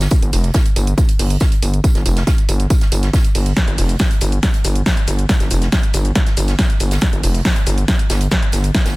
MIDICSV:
0, 0, Header, 1, 3, 480
1, 0, Start_track
1, 0, Tempo, 431655
1, 127, Time_signature, 4, 2, 24, 8
1, 9968, End_track
2, 0, Start_track
2, 0, Title_t, "Analog synth bass"
2, 0, Program_c, 0, 38
2, 249, Note_on_c, 0, 31, 98
2, 343, Note_off_c, 0, 31, 0
2, 366, Note_on_c, 0, 29, 102
2, 559, Note_off_c, 0, 29, 0
2, 846, Note_on_c, 0, 31, 105
2, 1039, Note_off_c, 0, 31, 0
2, 1326, Note_on_c, 0, 31, 96
2, 1519, Note_off_c, 0, 31, 0
2, 1806, Note_on_c, 0, 31, 88
2, 1999, Note_off_c, 0, 31, 0
2, 2169, Note_on_c, 0, 31, 98
2, 2263, Note_off_c, 0, 31, 0
2, 2286, Note_on_c, 0, 29, 101
2, 2479, Note_off_c, 0, 29, 0
2, 2766, Note_on_c, 0, 31, 107
2, 2959, Note_off_c, 0, 31, 0
2, 3246, Note_on_c, 0, 31, 98
2, 3439, Note_off_c, 0, 31, 0
2, 3727, Note_on_c, 0, 31, 88
2, 3920, Note_off_c, 0, 31, 0
2, 4089, Note_on_c, 0, 31, 95
2, 4183, Note_off_c, 0, 31, 0
2, 4206, Note_on_c, 0, 29, 101
2, 4399, Note_off_c, 0, 29, 0
2, 4686, Note_on_c, 0, 31, 105
2, 4879, Note_off_c, 0, 31, 0
2, 5166, Note_on_c, 0, 31, 99
2, 5359, Note_off_c, 0, 31, 0
2, 5646, Note_on_c, 0, 31, 88
2, 5839, Note_off_c, 0, 31, 0
2, 6008, Note_on_c, 0, 31, 99
2, 6102, Note_off_c, 0, 31, 0
2, 6125, Note_on_c, 0, 29, 102
2, 6319, Note_off_c, 0, 29, 0
2, 6605, Note_on_c, 0, 31, 109
2, 6799, Note_off_c, 0, 31, 0
2, 7086, Note_on_c, 0, 31, 101
2, 7279, Note_off_c, 0, 31, 0
2, 7566, Note_on_c, 0, 31, 90
2, 7759, Note_off_c, 0, 31, 0
2, 7928, Note_on_c, 0, 31, 97
2, 8023, Note_off_c, 0, 31, 0
2, 8047, Note_on_c, 0, 29, 101
2, 8240, Note_off_c, 0, 29, 0
2, 8526, Note_on_c, 0, 31, 110
2, 8719, Note_off_c, 0, 31, 0
2, 9006, Note_on_c, 0, 31, 97
2, 9199, Note_off_c, 0, 31, 0
2, 9486, Note_on_c, 0, 31, 87
2, 9679, Note_off_c, 0, 31, 0
2, 9849, Note_on_c, 0, 31, 97
2, 9943, Note_off_c, 0, 31, 0
2, 9968, End_track
3, 0, Start_track
3, 0, Title_t, "Drums"
3, 9, Note_on_c, 9, 42, 58
3, 10, Note_on_c, 9, 38, 100
3, 13, Note_on_c, 9, 54, 73
3, 118, Note_off_c, 9, 54, 0
3, 118, Note_on_c, 9, 54, 96
3, 120, Note_off_c, 9, 42, 0
3, 121, Note_off_c, 9, 38, 0
3, 126, Note_on_c, 9, 36, 127
3, 126, Note_on_c, 9, 42, 82
3, 229, Note_off_c, 9, 54, 0
3, 237, Note_off_c, 9, 36, 0
3, 238, Note_off_c, 9, 42, 0
3, 250, Note_on_c, 9, 42, 52
3, 361, Note_off_c, 9, 42, 0
3, 361, Note_on_c, 9, 46, 72
3, 367, Note_off_c, 9, 46, 0
3, 367, Note_on_c, 9, 46, 111
3, 478, Note_off_c, 9, 46, 0
3, 490, Note_on_c, 9, 42, 52
3, 598, Note_on_c, 9, 54, 88
3, 601, Note_off_c, 9, 42, 0
3, 603, Note_on_c, 9, 38, 120
3, 605, Note_on_c, 9, 36, 126
3, 607, Note_on_c, 9, 42, 80
3, 709, Note_off_c, 9, 54, 0
3, 714, Note_off_c, 9, 38, 0
3, 717, Note_off_c, 9, 36, 0
3, 718, Note_off_c, 9, 42, 0
3, 727, Note_on_c, 9, 42, 43
3, 730, Note_off_c, 9, 42, 0
3, 730, Note_on_c, 9, 42, 53
3, 841, Note_off_c, 9, 42, 0
3, 846, Note_on_c, 9, 54, 64
3, 848, Note_on_c, 9, 46, 114
3, 958, Note_off_c, 9, 54, 0
3, 959, Note_off_c, 9, 46, 0
3, 971, Note_on_c, 9, 42, 54
3, 1082, Note_off_c, 9, 42, 0
3, 1086, Note_on_c, 9, 36, 125
3, 1088, Note_on_c, 9, 42, 81
3, 1089, Note_on_c, 9, 54, 90
3, 1197, Note_off_c, 9, 36, 0
3, 1199, Note_off_c, 9, 42, 0
3, 1200, Note_off_c, 9, 54, 0
3, 1207, Note_on_c, 9, 42, 47
3, 1210, Note_off_c, 9, 42, 0
3, 1210, Note_on_c, 9, 42, 53
3, 1321, Note_off_c, 9, 42, 0
3, 1327, Note_on_c, 9, 46, 110
3, 1439, Note_off_c, 9, 46, 0
3, 1450, Note_on_c, 9, 42, 53
3, 1558, Note_on_c, 9, 54, 84
3, 1561, Note_off_c, 9, 42, 0
3, 1565, Note_on_c, 9, 38, 100
3, 1566, Note_on_c, 9, 36, 127
3, 1567, Note_on_c, 9, 42, 82
3, 1670, Note_off_c, 9, 54, 0
3, 1676, Note_off_c, 9, 38, 0
3, 1677, Note_off_c, 9, 36, 0
3, 1679, Note_off_c, 9, 42, 0
3, 1690, Note_on_c, 9, 42, 53
3, 1695, Note_off_c, 9, 42, 0
3, 1695, Note_on_c, 9, 42, 40
3, 1806, Note_off_c, 9, 42, 0
3, 1807, Note_on_c, 9, 46, 109
3, 1811, Note_on_c, 9, 54, 62
3, 1918, Note_off_c, 9, 46, 0
3, 1922, Note_off_c, 9, 54, 0
3, 1930, Note_on_c, 9, 42, 55
3, 2042, Note_off_c, 9, 42, 0
3, 2045, Note_on_c, 9, 36, 125
3, 2047, Note_on_c, 9, 42, 78
3, 2047, Note_on_c, 9, 54, 98
3, 2157, Note_off_c, 9, 36, 0
3, 2158, Note_off_c, 9, 54, 0
3, 2159, Note_off_c, 9, 42, 0
3, 2170, Note_on_c, 9, 38, 40
3, 2170, Note_on_c, 9, 42, 52
3, 2281, Note_off_c, 9, 38, 0
3, 2281, Note_off_c, 9, 42, 0
3, 2286, Note_on_c, 9, 54, 71
3, 2287, Note_on_c, 9, 46, 111
3, 2397, Note_off_c, 9, 54, 0
3, 2398, Note_off_c, 9, 46, 0
3, 2407, Note_on_c, 9, 38, 57
3, 2409, Note_on_c, 9, 42, 54
3, 2518, Note_off_c, 9, 38, 0
3, 2521, Note_off_c, 9, 42, 0
3, 2524, Note_on_c, 9, 38, 123
3, 2525, Note_on_c, 9, 36, 125
3, 2526, Note_on_c, 9, 42, 81
3, 2533, Note_on_c, 9, 54, 95
3, 2635, Note_off_c, 9, 38, 0
3, 2637, Note_off_c, 9, 36, 0
3, 2638, Note_off_c, 9, 42, 0
3, 2644, Note_off_c, 9, 54, 0
3, 2648, Note_on_c, 9, 42, 52
3, 2760, Note_off_c, 9, 42, 0
3, 2766, Note_on_c, 9, 46, 112
3, 2772, Note_on_c, 9, 54, 69
3, 2877, Note_off_c, 9, 46, 0
3, 2883, Note_off_c, 9, 54, 0
3, 2889, Note_on_c, 9, 42, 52
3, 3000, Note_off_c, 9, 42, 0
3, 3004, Note_on_c, 9, 54, 98
3, 3006, Note_on_c, 9, 36, 124
3, 3006, Note_on_c, 9, 42, 78
3, 3115, Note_off_c, 9, 54, 0
3, 3117, Note_off_c, 9, 36, 0
3, 3117, Note_off_c, 9, 42, 0
3, 3128, Note_on_c, 9, 42, 52
3, 3129, Note_on_c, 9, 38, 57
3, 3240, Note_off_c, 9, 42, 0
3, 3241, Note_off_c, 9, 38, 0
3, 3246, Note_on_c, 9, 46, 112
3, 3248, Note_on_c, 9, 54, 69
3, 3357, Note_off_c, 9, 46, 0
3, 3359, Note_off_c, 9, 54, 0
3, 3365, Note_on_c, 9, 38, 52
3, 3368, Note_on_c, 9, 42, 52
3, 3477, Note_off_c, 9, 38, 0
3, 3480, Note_off_c, 9, 42, 0
3, 3485, Note_on_c, 9, 42, 77
3, 3486, Note_on_c, 9, 36, 122
3, 3489, Note_on_c, 9, 54, 88
3, 3492, Note_on_c, 9, 38, 115
3, 3597, Note_off_c, 9, 36, 0
3, 3597, Note_off_c, 9, 42, 0
3, 3601, Note_off_c, 9, 54, 0
3, 3603, Note_off_c, 9, 38, 0
3, 3608, Note_on_c, 9, 42, 51
3, 3609, Note_off_c, 9, 42, 0
3, 3609, Note_on_c, 9, 42, 45
3, 3720, Note_off_c, 9, 42, 0
3, 3725, Note_on_c, 9, 46, 105
3, 3732, Note_off_c, 9, 46, 0
3, 3732, Note_on_c, 9, 46, 72
3, 3843, Note_off_c, 9, 46, 0
3, 3848, Note_on_c, 9, 42, 54
3, 3959, Note_off_c, 9, 42, 0
3, 3965, Note_on_c, 9, 38, 112
3, 3965, Note_on_c, 9, 42, 76
3, 3965, Note_on_c, 9, 82, 44
3, 3966, Note_on_c, 9, 36, 119
3, 3969, Note_on_c, 9, 54, 86
3, 4076, Note_off_c, 9, 38, 0
3, 4076, Note_off_c, 9, 42, 0
3, 4076, Note_off_c, 9, 82, 0
3, 4077, Note_off_c, 9, 36, 0
3, 4080, Note_off_c, 9, 54, 0
3, 4087, Note_on_c, 9, 42, 49
3, 4087, Note_on_c, 9, 82, 22
3, 4198, Note_off_c, 9, 42, 0
3, 4198, Note_off_c, 9, 82, 0
3, 4205, Note_on_c, 9, 46, 105
3, 4205, Note_on_c, 9, 82, 79
3, 4210, Note_off_c, 9, 46, 0
3, 4210, Note_on_c, 9, 46, 73
3, 4316, Note_off_c, 9, 82, 0
3, 4321, Note_off_c, 9, 46, 0
3, 4327, Note_on_c, 9, 42, 51
3, 4327, Note_on_c, 9, 82, 34
3, 4438, Note_off_c, 9, 42, 0
3, 4438, Note_off_c, 9, 82, 0
3, 4438, Note_on_c, 9, 54, 90
3, 4445, Note_on_c, 9, 38, 113
3, 4445, Note_on_c, 9, 42, 77
3, 4445, Note_on_c, 9, 82, 44
3, 4446, Note_on_c, 9, 36, 123
3, 4450, Note_off_c, 9, 38, 0
3, 4450, Note_on_c, 9, 38, 113
3, 4550, Note_off_c, 9, 54, 0
3, 4556, Note_off_c, 9, 42, 0
3, 4556, Note_off_c, 9, 82, 0
3, 4557, Note_off_c, 9, 36, 0
3, 4562, Note_off_c, 9, 38, 0
3, 4567, Note_on_c, 9, 42, 51
3, 4567, Note_on_c, 9, 82, 22
3, 4571, Note_off_c, 9, 42, 0
3, 4571, Note_on_c, 9, 42, 42
3, 4678, Note_off_c, 9, 82, 0
3, 4679, Note_on_c, 9, 54, 69
3, 4682, Note_off_c, 9, 42, 0
3, 4685, Note_on_c, 9, 46, 106
3, 4685, Note_on_c, 9, 82, 78
3, 4790, Note_off_c, 9, 54, 0
3, 4796, Note_off_c, 9, 46, 0
3, 4796, Note_off_c, 9, 82, 0
3, 4807, Note_on_c, 9, 42, 50
3, 4807, Note_on_c, 9, 82, 33
3, 4918, Note_off_c, 9, 42, 0
3, 4918, Note_off_c, 9, 82, 0
3, 4925, Note_on_c, 9, 38, 117
3, 4925, Note_on_c, 9, 42, 75
3, 4925, Note_on_c, 9, 82, 44
3, 4926, Note_on_c, 9, 36, 117
3, 4934, Note_on_c, 9, 54, 84
3, 5036, Note_off_c, 9, 38, 0
3, 5036, Note_off_c, 9, 42, 0
3, 5036, Note_off_c, 9, 82, 0
3, 5037, Note_off_c, 9, 36, 0
3, 5045, Note_off_c, 9, 54, 0
3, 5048, Note_on_c, 9, 42, 51
3, 5048, Note_on_c, 9, 82, 22
3, 5054, Note_off_c, 9, 42, 0
3, 5054, Note_on_c, 9, 42, 44
3, 5159, Note_off_c, 9, 82, 0
3, 5165, Note_off_c, 9, 42, 0
3, 5166, Note_on_c, 9, 46, 107
3, 5166, Note_on_c, 9, 54, 66
3, 5166, Note_on_c, 9, 82, 78
3, 5277, Note_off_c, 9, 46, 0
3, 5277, Note_off_c, 9, 54, 0
3, 5277, Note_off_c, 9, 82, 0
3, 5287, Note_on_c, 9, 42, 51
3, 5287, Note_on_c, 9, 82, 34
3, 5398, Note_off_c, 9, 42, 0
3, 5398, Note_off_c, 9, 82, 0
3, 5405, Note_on_c, 9, 38, 118
3, 5405, Note_on_c, 9, 42, 76
3, 5405, Note_on_c, 9, 82, 45
3, 5406, Note_on_c, 9, 36, 119
3, 5406, Note_on_c, 9, 54, 89
3, 5411, Note_off_c, 9, 38, 0
3, 5411, Note_on_c, 9, 38, 120
3, 5517, Note_off_c, 9, 36, 0
3, 5517, Note_off_c, 9, 42, 0
3, 5517, Note_off_c, 9, 54, 0
3, 5517, Note_off_c, 9, 82, 0
3, 5523, Note_off_c, 9, 38, 0
3, 5528, Note_on_c, 9, 42, 52
3, 5528, Note_on_c, 9, 82, 23
3, 5639, Note_off_c, 9, 42, 0
3, 5639, Note_off_c, 9, 82, 0
3, 5644, Note_on_c, 9, 54, 63
3, 5645, Note_on_c, 9, 46, 103
3, 5645, Note_on_c, 9, 82, 74
3, 5755, Note_off_c, 9, 54, 0
3, 5756, Note_off_c, 9, 46, 0
3, 5756, Note_off_c, 9, 82, 0
3, 5767, Note_on_c, 9, 42, 51
3, 5767, Note_on_c, 9, 82, 33
3, 5878, Note_off_c, 9, 42, 0
3, 5878, Note_off_c, 9, 82, 0
3, 5884, Note_on_c, 9, 38, 118
3, 5884, Note_on_c, 9, 42, 75
3, 5884, Note_on_c, 9, 82, 46
3, 5886, Note_on_c, 9, 36, 116
3, 5894, Note_on_c, 9, 54, 87
3, 5995, Note_off_c, 9, 38, 0
3, 5995, Note_off_c, 9, 42, 0
3, 5995, Note_off_c, 9, 82, 0
3, 5997, Note_off_c, 9, 36, 0
3, 6005, Note_off_c, 9, 54, 0
3, 6007, Note_on_c, 9, 42, 51
3, 6007, Note_on_c, 9, 82, 22
3, 6013, Note_on_c, 9, 38, 43
3, 6119, Note_off_c, 9, 42, 0
3, 6119, Note_off_c, 9, 82, 0
3, 6124, Note_off_c, 9, 38, 0
3, 6124, Note_on_c, 9, 46, 101
3, 6124, Note_on_c, 9, 82, 79
3, 6133, Note_on_c, 9, 54, 75
3, 6235, Note_off_c, 9, 46, 0
3, 6235, Note_off_c, 9, 82, 0
3, 6245, Note_off_c, 9, 54, 0
3, 6246, Note_on_c, 9, 42, 52
3, 6246, Note_on_c, 9, 82, 33
3, 6249, Note_on_c, 9, 38, 63
3, 6357, Note_off_c, 9, 42, 0
3, 6357, Note_off_c, 9, 82, 0
3, 6360, Note_off_c, 9, 38, 0
3, 6364, Note_on_c, 9, 38, 120
3, 6364, Note_on_c, 9, 42, 76
3, 6364, Note_on_c, 9, 82, 45
3, 6366, Note_on_c, 9, 36, 117
3, 6368, Note_on_c, 9, 54, 87
3, 6369, Note_off_c, 9, 38, 0
3, 6369, Note_on_c, 9, 38, 123
3, 6476, Note_off_c, 9, 42, 0
3, 6476, Note_off_c, 9, 82, 0
3, 6477, Note_off_c, 9, 36, 0
3, 6479, Note_off_c, 9, 54, 0
3, 6481, Note_off_c, 9, 38, 0
3, 6487, Note_on_c, 9, 42, 51
3, 6487, Note_on_c, 9, 82, 22
3, 6598, Note_off_c, 9, 42, 0
3, 6598, Note_off_c, 9, 82, 0
3, 6604, Note_on_c, 9, 46, 106
3, 6604, Note_on_c, 9, 82, 78
3, 6610, Note_on_c, 9, 54, 64
3, 6715, Note_off_c, 9, 46, 0
3, 6715, Note_off_c, 9, 82, 0
3, 6721, Note_off_c, 9, 54, 0
3, 6726, Note_on_c, 9, 42, 50
3, 6726, Note_on_c, 9, 82, 32
3, 6837, Note_off_c, 9, 42, 0
3, 6837, Note_off_c, 9, 82, 0
3, 6841, Note_on_c, 9, 54, 91
3, 6844, Note_on_c, 9, 38, 119
3, 6844, Note_on_c, 9, 42, 78
3, 6844, Note_on_c, 9, 82, 44
3, 6845, Note_on_c, 9, 36, 114
3, 6953, Note_off_c, 9, 54, 0
3, 6955, Note_off_c, 9, 38, 0
3, 6955, Note_off_c, 9, 42, 0
3, 6955, Note_off_c, 9, 82, 0
3, 6957, Note_off_c, 9, 36, 0
3, 6967, Note_on_c, 9, 42, 52
3, 6967, Note_on_c, 9, 82, 23
3, 6968, Note_on_c, 9, 38, 51
3, 7078, Note_off_c, 9, 42, 0
3, 7078, Note_off_c, 9, 82, 0
3, 7079, Note_off_c, 9, 38, 0
3, 7084, Note_on_c, 9, 46, 103
3, 7084, Note_on_c, 9, 82, 78
3, 7088, Note_on_c, 9, 54, 62
3, 7195, Note_off_c, 9, 46, 0
3, 7195, Note_off_c, 9, 82, 0
3, 7199, Note_off_c, 9, 54, 0
3, 7207, Note_on_c, 9, 38, 55
3, 7207, Note_on_c, 9, 42, 51
3, 7207, Note_on_c, 9, 82, 34
3, 7318, Note_off_c, 9, 38, 0
3, 7318, Note_off_c, 9, 42, 0
3, 7318, Note_off_c, 9, 82, 0
3, 7324, Note_on_c, 9, 38, 122
3, 7324, Note_on_c, 9, 42, 77
3, 7324, Note_on_c, 9, 82, 46
3, 7325, Note_on_c, 9, 36, 117
3, 7326, Note_off_c, 9, 38, 0
3, 7326, Note_on_c, 9, 38, 112
3, 7328, Note_on_c, 9, 54, 81
3, 7435, Note_off_c, 9, 42, 0
3, 7435, Note_off_c, 9, 82, 0
3, 7437, Note_off_c, 9, 36, 0
3, 7438, Note_off_c, 9, 38, 0
3, 7439, Note_off_c, 9, 54, 0
3, 7447, Note_on_c, 9, 42, 51
3, 7447, Note_on_c, 9, 82, 23
3, 7559, Note_off_c, 9, 42, 0
3, 7559, Note_off_c, 9, 82, 0
3, 7560, Note_on_c, 9, 54, 58
3, 7564, Note_on_c, 9, 46, 101
3, 7564, Note_on_c, 9, 82, 77
3, 7671, Note_off_c, 9, 54, 0
3, 7675, Note_off_c, 9, 46, 0
3, 7675, Note_off_c, 9, 82, 0
3, 7687, Note_on_c, 9, 42, 52
3, 7687, Note_on_c, 9, 82, 35
3, 7691, Note_on_c, 9, 54, 87
3, 7693, Note_on_c, 9, 38, 106
3, 7798, Note_off_c, 9, 42, 0
3, 7798, Note_off_c, 9, 54, 0
3, 7798, Note_off_c, 9, 82, 0
3, 7798, Note_on_c, 9, 54, 94
3, 7804, Note_off_c, 9, 38, 0
3, 7804, Note_on_c, 9, 38, 124
3, 7804, Note_on_c, 9, 42, 76
3, 7804, Note_on_c, 9, 82, 43
3, 7805, Note_on_c, 9, 36, 115
3, 7909, Note_off_c, 9, 54, 0
3, 7916, Note_off_c, 9, 38, 0
3, 7916, Note_off_c, 9, 42, 0
3, 7916, Note_off_c, 9, 82, 0
3, 7917, Note_off_c, 9, 36, 0
3, 7927, Note_on_c, 9, 42, 52
3, 7927, Note_on_c, 9, 82, 22
3, 8039, Note_off_c, 9, 42, 0
3, 8039, Note_off_c, 9, 82, 0
3, 8045, Note_on_c, 9, 46, 100
3, 8045, Note_on_c, 9, 82, 76
3, 8156, Note_off_c, 9, 46, 0
3, 8156, Note_off_c, 9, 82, 0
3, 8167, Note_on_c, 9, 42, 53
3, 8167, Note_on_c, 9, 82, 32
3, 8279, Note_off_c, 9, 42, 0
3, 8279, Note_off_c, 9, 82, 0
3, 8285, Note_on_c, 9, 36, 116
3, 8285, Note_on_c, 9, 38, 126
3, 8285, Note_on_c, 9, 42, 76
3, 8285, Note_on_c, 9, 82, 44
3, 8293, Note_off_c, 9, 38, 0
3, 8293, Note_on_c, 9, 38, 125
3, 8293, Note_on_c, 9, 54, 91
3, 8396, Note_off_c, 9, 42, 0
3, 8396, Note_off_c, 9, 82, 0
3, 8397, Note_off_c, 9, 36, 0
3, 8404, Note_off_c, 9, 38, 0
3, 8404, Note_off_c, 9, 54, 0
3, 8407, Note_on_c, 9, 42, 45
3, 8407, Note_on_c, 9, 82, 21
3, 8518, Note_off_c, 9, 82, 0
3, 8519, Note_off_c, 9, 42, 0
3, 8525, Note_on_c, 9, 46, 104
3, 8525, Note_on_c, 9, 82, 75
3, 8526, Note_on_c, 9, 54, 64
3, 8636, Note_off_c, 9, 46, 0
3, 8636, Note_off_c, 9, 82, 0
3, 8637, Note_off_c, 9, 54, 0
3, 8647, Note_on_c, 9, 42, 50
3, 8647, Note_on_c, 9, 82, 32
3, 8758, Note_off_c, 9, 42, 0
3, 8758, Note_off_c, 9, 82, 0
3, 8765, Note_on_c, 9, 36, 117
3, 8765, Note_on_c, 9, 38, 121
3, 8765, Note_on_c, 9, 42, 78
3, 8765, Note_on_c, 9, 82, 43
3, 8771, Note_on_c, 9, 54, 88
3, 8876, Note_off_c, 9, 38, 0
3, 8876, Note_off_c, 9, 42, 0
3, 8876, Note_off_c, 9, 82, 0
3, 8877, Note_off_c, 9, 36, 0
3, 8883, Note_off_c, 9, 54, 0
3, 8887, Note_on_c, 9, 42, 41
3, 8888, Note_off_c, 9, 42, 0
3, 8888, Note_on_c, 9, 42, 54
3, 8888, Note_on_c, 9, 82, 22
3, 8999, Note_off_c, 9, 42, 0
3, 8999, Note_off_c, 9, 82, 0
3, 9004, Note_on_c, 9, 54, 83
3, 9005, Note_on_c, 9, 46, 103
3, 9005, Note_on_c, 9, 82, 76
3, 9006, Note_on_c, 9, 38, 108
3, 9115, Note_off_c, 9, 54, 0
3, 9117, Note_off_c, 9, 46, 0
3, 9117, Note_off_c, 9, 82, 0
3, 9118, Note_off_c, 9, 38, 0
3, 9128, Note_on_c, 9, 42, 54
3, 9128, Note_on_c, 9, 82, 33
3, 9132, Note_off_c, 9, 42, 0
3, 9132, Note_on_c, 9, 42, 42
3, 9239, Note_off_c, 9, 82, 0
3, 9242, Note_on_c, 9, 54, 58
3, 9243, Note_off_c, 9, 42, 0
3, 9245, Note_on_c, 9, 36, 116
3, 9246, Note_on_c, 9, 38, 125
3, 9246, Note_on_c, 9, 42, 80
3, 9246, Note_on_c, 9, 82, 45
3, 9353, Note_off_c, 9, 54, 0
3, 9357, Note_off_c, 9, 36, 0
3, 9358, Note_off_c, 9, 38, 0
3, 9358, Note_off_c, 9, 42, 0
3, 9358, Note_off_c, 9, 82, 0
3, 9368, Note_on_c, 9, 42, 52
3, 9368, Note_on_c, 9, 82, 22
3, 9476, Note_on_c, 9, 54, 74
3, 9480, Note_off_c, 9, 42, 0
3, 9480, Note_off_c, 9, 82, 0
3, 9486, Note_on_c, 9, 46, 100
3, 9486, Note_on_c, 9, 82, 74
3, 9587, Note_off_c, 9, 54, 0
3, 9597, Note_off_c, 9, 46, 0
3, 9597, Note_off_c, 9, 82, 0
3, 9608, Note_on_c, 9, 42, 37
3, 9608, Note_on_c, 9, 82, 34
3, 9719, Note_off_c, 9, 42, 0
3, 9719, Note_off_c, 9, 82, 0
3, 9723, Note_on_c, 9, 54, 82
3, 9725, Note_on_c, 9, 38, 127
3, 9725, Note_on_c, 9, 42, 80
3, 9725, Note_on_c, 9, 82, 42
3, 9726, Note_on_c, 9, 36, 119
3, 9729, Note_off_c, 9, 38, 0
3, 9729, Note_on_c, 9, 38, 98
3, 9834, Note_off_c, 9, 54, 0
3, 9836, Note_off_c, 9, 42, 0
3, 9836, Note_off_c, 9, 82, 0
3, 9837, Note_off_c, 9, 36, 0
3, 9840, Note_off_c, 9, 38, 0
3, 9848, Note_on_c, 9, 38, 102
3, 9848, Note_on_c, 9, 42, 54
3, 9848, Note_on_c, 9, 82, 22
3, 9849, Note_on_c, 9, 54, 80
3, 9959, Note_off_c, 9, 42, 0
3, 9959, Note_off_c, 9, 82, 0
3, 9960, Note_off_c, 9, 38, 0
3, 9960, Note_off_c, 9, 54, 0
3, 9968, End_track
0, 0, End_of_file